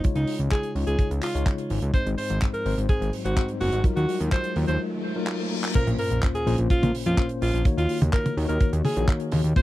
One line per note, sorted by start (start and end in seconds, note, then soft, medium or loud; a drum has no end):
0.00 0.72 C#3 medium
0.00 0.72 G#3 medium
0.00 0.72 D#4 medium
0.00 0.72 F4 medium
0.00 0.72 C#5 medium
0.00 riser medium
0.04 kick loud
0.04 closed hi-hat medium
0.15 0.25 C#2 medium
0.15 0.38 D#4 medium
0.15 closed hi-hat medium
0.27 open hi-hat loud
0.39 0.49 C#2 medium
0.39 closed hi-hat medium
0.51 0.73 G#4 medium
0.51 kick loud
0.51 clap loud
0.51 closed hi-hat medium
0.63 closed hi-hat medium
0.75 0.85 C#2 medium
0.75 1.32 C#3 medium
0.75 1.32 G#3 medium
0.75 1.32 D#4 medium
0.75 1.32 F4 medium
0.75 1.32 C#5 medium
0.75 open hi-hat medium
0.87 0.96 C#2 medium
0.87 1.09 G#4 medium
0.87 closed hi-hat medium
0.99 kick loud
0.99 closed hi-hat medium
1.11 1.20 C#2 medium
1.11 closed hi-hat medium
1.22 1.45 F4 medium
1.22 clap medium
1.22 open hi-hat loud
1.35 1.44 C#2 medium
1.35 1.91 C#3 medium
1.35 1.91 G#3 medium
1.35 1.91 D#4 medium
1.35 1.91 F4 medium
1.35 1.91 C#5 medium
1.35 closed hi-hat medium
1.46 kick loud
1.46 clap loud
1.46 closed hi-hat medium
1.58 closed hi-hat medium
1.70 1.80 G#1 medium
1.70 open hi-hat loud
1.82 1.92 C#2 medium
1.82 closed hi-hat medium
1.94 2.63 G#2 medium
1.94 2.63 G#3 medium
1.94 2.63 C4 medium
1.94 2.63 D#4 medium
1.94 2.09 C5 loud
1.94 2.63 C5 medium
1.94 kick loud
1.94 closed hi-hat medium
2.06 2.16 G#1 medium
2.06 closed hi-hat medium
2.17 2.40 C5 medium
2.17 open hi-hat loud
2.30 2.39 G#1 medium
2.30 closed hi-hat medium
2.41 kick loud
2.41 clap loud
2.41 closed hi-hat medium
2.54 2.76 A#4 loud
2.54 closed hi-hat soft
2.65 2.75 G#1 medium
2.65 3.22 G#2 medium
2.65 3.22 G#3 medium
2.65 3.22 C4 medium
2.65 3.22 D#4 medium
2.65 3.22 C5 medium
2.65 open hi-hat medium
2.78 2.87 G#1 medium
2.78 closed hi-hat medium
2.89 3.11 G#4 loud
2.89 kick loud
2.89 closed hi-hat medium
3.01 3.11 G#1 medium
3.01 closed hi-hat medium
3.13 open hi-hat loud
3.25 3.35 G#1 medium
3.25 3.82 G#2 medium
3.25 3.82 G#3 medium
3.25 3.82 C4 medium
3.25 3.82 D#4 medium
3.25 3.47 F#4 medium
3.25 3.82 C5 medium
3.25 closed hi-hat medium
3.37 kick loud
3.37 clap loud
3.37 closed hi-hat medium
3.48 closed hi-hat medium
3.61 3.70 F#1 medium
3.61 3.83 F#4 loud
3.61 open hi-hat loud
3.72 3.82 G#1 medium
3.72 closed hi-hat medium
3.84 4.53 F#3 medium
3.84 4.53 D#4 medium
3.84 4.53 F4 medium
3.84 4.53 A#4 medium
3.84 kick loud
3.84 closed hi-hat medium
3.96 4.06 D#2 medium
3.96 4.18 F#4 medium
3.96 closed hi-hat medium
4.09 open hi-hat loud
4.20 4.30 D#2 medium
4.20 closed hi-hat medium
4.32 4.54 C5 medium
4.32 kick loud
4.32 clap loud
4.32 closed hi-hat medium
4.44 closed hi-hat medium
4.56 4.66 D#2 medium
4.56 5.13 F#3 medium
4.56 5.13 D#4 medium
4.56 5.13 F4 medium
4.56 5.13 A#4 medium
4.56 open hi-hat medium
4.68 4.78 D#2 medium
4.68 4.80 C5 medium
4.68 closed hi-hat medium
4.80 reverse cymbal medium
5.16 5.72 F#3 medium
5.16 5.72 D#4 medium
5.16 5.72 F4 medium
5.16 5.72 A#4 medium
5.27 clap loud
5.64 clap medium
5.75 6.44 A#2 medium
5.75 6.44 A#3 medium
5.75 6.44 C#4 medium
5.75 6.44 F4 medium
5.75 5.90 A#4 loud
5.75 6.44 C5 medium
5.75 kick loud
5.75 closed hi-hat medium
5.75 crash loud
5.75 sub drop medium
5.87 5.97 A#1 medium
5.87 closed hi-hat medium
5.98 6.21 A#4 loud
5.98 open hi-hat loud
6.11 6.20 A#1 medium
6.11 closed hi-hat medium
6.23 kick loud
6.23 clap loud
6.23 closed hi-hat medium
6.35 6.57 G#4 loud
6.35 closed hi-hat medium
6.47 6.56 A#1 medium
6.47 7.03 A#2 medium
6.47 7.03 A#3 medium
6.47 7.03 C#4 medium
6.47 7.03 F4 medium
6.47 7.03 C5 medium
6.47 open hi-hat loud
6.58 6.68 A#1 medium
6.58 closed hi-hat medium
6.70 6.93 F4 loud
6.70 kick loud
6.70 closed hi-hat medium
6.83 6.92 A#1 medium
6.83 closed hi-hat medium
6.83 high tom medium
6.95 open hi-hat loud
7.06 7.16 F2 medium
7.06 7.63 A#2 medium
7.06 7.63 A#3 medium
7.06 7.63 C#4 medium
7.06 7.28 F4 medium
7.06 7.63 F4 medium
7.06 7.63 C5 medium
7.06 closed hi-hat medium
7.17 kick loud
7.17 clap loud
7.17 closed hi-hat medium
7.29 closed hi-hat medium
7.42 7.51 A#1 medium
7.42 7.64 F4 loud
7.42 open hi-hat loud
7.54 7.63 A#1 medium
7.54 closed hi-hat medium
7.65 8.34 D#3 medium
7.65 8.34 A#3 medium
7.65 8.34 D#4 medium
7.65 8.34 F#4 medium
7.65 8.34 C#5 medium
7.65 kick loud
7.65 closed hi-hat medium
7.78 7.87 D#2 medium
7.78 8.00 F4 loud
7.78 closed hi-hat medium
7.89 open hi-hat loud
8.01 8.11 D#2 medium
8.01 closed hi-hat medium
8.01 high tom medium
8.13 8.35 A#4 medium
8.13 kick loud
8.13 clap loud
8.13 closed hi-hat medium
8.26 closed hi-hat medium
8.26 high tom medium
8.37 8.47 D#2 medium
8.37 8.94 D#3 medium
8.37 8.94 A#3 medium
8.37 8.94 D#4 medium
8.37 8.94 F#4 medium
8.37 8.94 C#5 medium
8.37 open hi-hat medium
8.49 8.59 D#2 medium
8.49 8.71 A#4 loud
8.49 closed hi-hat medium
8.60 kick loud
8.60 closed hi-hat medium
8.73 8.82 D#2 medium
8.73 closed hi-hat medium
8.85 9.07 G#4 medium
8.85 open hi-hat loud
8.85 high tom medium
8.96 9.06 A#1 medium
8.96 9.53 D#3 medium
8.96 9.53 A#3 medium
8.96 9.53 D#4 medium
8.96 9.53 F#4 medium
8.96 9.53 C#5 medium
8.96 closed hi-hat medium
9.08 kick loud
9.08 clap loud
9.08 closed hi-hat medium
9.20 closed hi-hat medium
9.32 9.42 D#2 loud
9.32 open hi-hat loud
9.32 high tom medium
9.44 9.54 D#2 medium
9.44 closed hi-hat medium
9.56 9.62 A#2 medium
9.56 9.62 A#3 medium
9.56 9.62 C#4 medium
9.56 9.62 F4 medium
9.56 9.62 C5 medium
9.56 9.62 C5 loud
9.56 kick loud
9.56 closed hi-hat medium